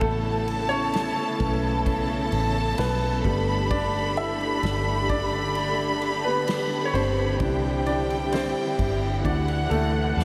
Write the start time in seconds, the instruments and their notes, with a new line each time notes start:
Already playing: string section A3 A4
0.00 fingered electric bass A1, string section C#3 B3 E4, upright piano A3 A4, violin section A5, kick, ride
0.48 ride
0.69 upright piano C#4 C#5, ride
0.94 snare, ride
1.38 fingered electric bass B1, upright piano A3 B3 C#4, kick, ride
1.86 violin section A5, kick, ride
2.32 fingered electric bass A1, ride
2.78 fingered electric bass B1, upright piano B3 B4, snare, ride
3.24 fingered electric bass G1, string section D3 D4 G4, upright piano G3 A3 B3, violin section B5, kick, ride
3.71 upright piano D4 D5, kick, ride
4.17 upright piano E4 E5, ride
4.41 ride
4.63 fingered electric bass G1, snare, ride
5.09 upright piano D4 D5, kick, ride
5.55 ride
6.02 ride
6.24 upright piano B3 B4
6.48 snare, ride
6.85 upright piano C#5
6.94 fingered electric bass G1, upright piano C4 C5, ride
7.39 fingered electric bass C2, upright piano E3 C4 D4, string section G3 C4 E4, violin section G5, kick, ride
7.86 upright piano D4 D5, ride
8.10 ride
8.32 upright piano C4 C5, snare, ride
8.79 fingered electric bass G1, kick, ride
9.24 fingered electric bass D2, upright piano E3 D4 F#4 D5, string section E3 A3 F#5, violin section F#5, kick, ride
9.48 ride
9.69 fingered electric bass D2, upright piano A3 A4, ride
10.17 fingered electric bass E2, violin section A5, snare